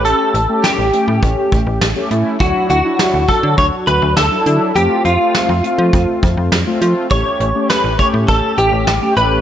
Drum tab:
HH |xxxxxxxx|xxxxxxxx|xxxxxxxx|xxxxxxxx|
SD |--o---o-|--o---o-|--o---o-|--o---o-|
BD |----oo--|o--oo---|----oo--|o--oo---|